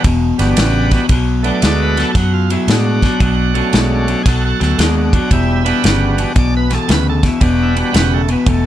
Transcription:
0.04 fingered electric bass E1, clean electric guitar E2 B2, kick, ride
0.38 fingered electric bass G1, clean electric guitar E2 B2, tonewheel organ G3 B3 D4 F#4, snare, ride
0.57 fingered electric bass A1, clean electric guitar E2 C#3, snare, ride
0.91 clean electric guitar E2 B2, kick, snare, ride
1.09 fingered electric bass B1, clean electric guitar B2 F#3, kick, ride
1.43 clean electric guitar B2 F#3, tonewheel organ A3 B3 D4 F#4, ride
1.47 tonewheel organ D5
1.62 fingered electric bass D2, clean electric guitar B2 G#3, snare, ride
1.82 tonewheel organ B4
1.97 clean electric guitar B2 F#3, tonewheel organ A4, snare, ride
2.15 fingered electric bass F#2, clean electric guitar B2 F#3, tonewheel organ F#4, kick, snare, ride
2.34 tonewheel organ F4
2.50 clean electric guitar B2 F#3, tonewheel organ E4, ride
2.68 fingered electric bass A2, clean electric guitar B2 G#3, tonewheel organ D4 F#4, snare, ride
3.02 clean electric guitar B2 F#3, kick, snare, ride
3.20 fingered electric bass B1, clean electric guitar B2 F#3, kick, ride
3.54 clean electric guitar B2 F#3, tonewheel organ A3 C#4 D4 F#4, ride
3.73 fingered electric bass B1, clean electric guitar B2 G#3, snare, ride
4.08 clean electric guitar B2 F#3, ride
4.23 fingered electric bass B1, clean electric guitar B2 F#3, tonewheel organ G#4, kick, snare, ride
4.28 tonewheel organ F#4 A4
4.45 tonewheel organ F#4 A4
4.60 fingered electric bass D2, clean electric guitar B2 F#3, tonewheel organ F#4 A4, snare, ride
4.78 fingered electric bass D#2, clean electric guitar B2 G#3, tonewheel organ D4 F#4, snare, ride
4.97 tonewheel organ D4 F#4
5.13 clean electric guitar B2 F#3, tonewheel organ D4 F#4, kick, ride
5.31 fingered electric bass E1, clean electric guitar E2 B2, tonewheel organ G3 E4, kick, ride
5.65 clean electric guitar E2 B2, tonewheel organ G3 B3 D4 F#4, ride
5.83 fingered electric bass G1, clean electric guitar E2 C#3, snare, ride
6.17 clean electric guitar E2 B2, ride
6.35 fingered electric bass B1, clean electric guitar E2 B2, tonewheel organ D5, kick, ride
6.57 tonewheel organ B4
6.70 clean electric guitar E2 B2, snare, ride
6.74 tonewheel organ A4
6.88 fingered electric bass D2, clean electric guitar E2 C#3, tonewheel organ B4, snare, ride
7.10 tonewheel organ A4
7.23 clean electric guitar E2 B2, kick, snare, ride
7.28 tonewheel organ E4
7.41 fingered electric bass E1, clean electric guitar E2 B2, tonewheel organ G3 B3 D4 F#4, kick, ride
7.63 tonewheel organ E4
7.76 clean electric guitar E2 B2, ride
7.80 tonewheel organ D4
7.93 fingered electric bass E1, clean electric guitar E2 C#3, snare, ride
7.99 tonewheel organ B3
8.14 tonewheel organ A3
8.28 clean electric guitar E2 B2, tonewheel organ B3, ride
8.46 fingered electric bass E1, clean electric guitar E2 B2, tonewheel organ A3, kick, ride

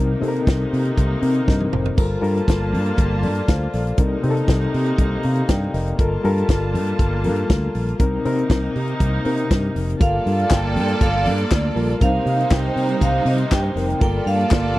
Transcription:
Already playing: fingered electric bass C2, reed electric piano C3 C4 D#4 A#4, string section C3 A#3 D#4
0.21 reed electric piano C3 C4 D#4 A4, fingered electric bass C3, open hi-hat
0.28 reed electric piano A#4
0.36 closed hi-hat
0.47 fingered electric bass C2, kick, snare, closed hi-hat
0.73 fingered electric bass C3, open hi-hat
0.85 closed hi-hat
0.97 fingered electric bass C2, kick, closed hi-hat
1.21 reed electric piano C3 C4 D#4 A#4, fingered electric bass C3, open hi-hat
1.35 closed hi-hat
1.48 fingered electric bass G2, reed electric piano A#4 D#5, kick, snare
1.60 high tom
1.72 fingered electric bass F1, reed electric piano G4 C5, mid tom
1.86 floor tom
1.97 fingered electric bass G1, reed electric piano G3 F4 A4 A#4, string section G3 A#3 F4 A5, kick, splash
2.21 fingered electric bass G2, reed electric piano G3 F4 A4 A#4, open hi-hat
2.37 closed hi-hat
2.48 fingered electric bass G1, kick, snare, closed hi-hat
2.73 fingered electric bass G2, open hi-hat
2.86 closed hi-hat
2.98 fingered electric bass G1, kick, closed hi-hat
3.23 fingered electric bass G2, reed electric piano A4 D5, open hi-hat
3.35 closed hi-hat
3.48 fingered electric bass D2, reed electric piano C5 F5, kick, snare, closed hi-hat
3.73 fingered electric bass A#1, reed electric piano A4 D5, snare, open hi-hat
3.87 closed hi-hat
3.98 fingered electric bass C2, reed electric piano C3 C4 D#4 A#4, string section C3 A#3 D#4, kick, closed hi-hat
4.23 reed electric piano C3 C4 D#4 G4, fingered electric bass C3, open hi-hat
4.30 reed electric piano A4
4.37 closed hi-hat
4.48 fingered electric bass C2, kick, snare, closed hi-hat
4.74 fingered electric bass C3, open hi-hat
4.86 closed hi-hat
4.98 fingered electric bass C2, kick, closed hi-hat
5.23 fingered electric bass C3, reed electric piano F5 A#5, open hi-hat
5.35 closed hi-hat
5.49 fingered electric bass G2, reed electric piano D5 G5, kick, snare, closed hi-hat
5.74 fingered electric bass F1, reed electric piano A#4 D#5, snare, open hi-hat
5.88 closed hi-hat
5.99 fingered electric bass G1, reed electric piano G3 F4 A4 A#4, string section G3 A#3 F4 A5, kick, closed hi-hat
6.24 fingered electric bass G2, reed electric piano G3 F4 A4 A#4, open hi-hat
6.38 closed hi-hat
6.49 fingered electric bass G1, kick, snare, closed hi-hat
6.74 fingered electric bass G2, open hi-hat
6.87 closed hi-hat
6.99 fingered electric bass G1, kick, closed hi-hat
7.24 fingered electric bass G2, reed electric piano G3 F4 A4 A#4, open hi-hat
7.36 closed hi-hat
7.50 fingered electric bass D2, kick, snare, closed hi-hat
7.75 fingered electric bass A#1, open hi-hat
7.89 closed hi-hat
7.99 fingered electric bass C2, reed electric piano C3 C4 D#4 A#4, string section C3 A#3 D#4, kick, closed hi-hat
8.25 reed electric piano C3 C4 D#4 A#4, fingered electric bass C3, open hi-hat
8.39 closed hi-hat
8.50 fingered electric bass C2, kick, snare, closed hi-hat
8.76 fingered electric bass C3, open hi-hat
8.88 closed hi-hat
9.00 fingered electric bass C2, kick, closed hi-hat
9.25 reed electric piano C3 C4 D#4 A#4, fingered electric bass C3, open hi-hat
9.37 closed hi-hat
9.51 fingered electric bass G2, kick, snare, closed hi-hat
9.76 fingered electric bass F1, open hi-hat
9.90 closed hi-hat
10.00 fingered electric bass G1, reed electric piano G3 F4 A4 A#4, string section G3 A#3 F4 A4 D5 A5, vibraphone F5, kick, closed hi-hat
10.26 fingered electric bass G2, open hi-hat
10.40 closed hi-hat
10.50 fingered electric bass G1, vibraphone G5, kick, snare, clap, closed hi-hat
10.76 fingered electric bass G2, open hi-hat
10.88 closed hi-hat
11.01 fingered electric bass G1, vibraphone F5, kick, closed hi-hat
11.26 fingered electric bass G2, vibraphone D5, open hi-hat
11.38 closed hi-hat
11.51 fingered electric bass D2, kick, snare, clap, closed hi-hat
11.75 fingered electric bass A#1, reed electric piano G3 F4 A4 A#4, open hi-hat
11.90 closed hi-hat
12.00 fingered electric bass C2, reed electric piano C3 C4 D4 A#4, string section C3 G3 A#3 D#4 C5, vibraphone F5, kick, closed hi-hat
12.07 reed electric piano D#4
12.26 fingered electric bass C3, open hi-hat
12.41 closed hi-hat
12.51 fingered electric bass C2, vibraphone G5, kick, snare, clap, closed hi-hat
12.76 fingered electric bass C3, open hi-hat
12.89 closed hi-hat
13.01 fingered electric bass C2, vibraphone F5, kick, closed hi-hat
13.25 fingered electric bass C3, vibraphone D#5, open hi-hat
13.38 closed hi-hat
13.51 fingered electric bass G2, vibraphone G5, kick, snare, clap, closed hi-hat
13.75 fingered electric bass F1, reed electric piano C3 C4 D#4 A#4, snare, open hi-hat
13.90 closed hi-hat
14.00 fingered electric bass G1, reed electric piano G3 F4 A4 A#4, string section G3 A#3 F4 A4 D5 A5, vibraphone G5, kick, closed hi-hat
14.26 fingered electric bass G2, vibraphone F5, open hi-hat
14.41 closed hi-hat
14.51 fingered electric bass G1, kick, snare, clap, closed hi-hat
14.76 fingered electric bass G2

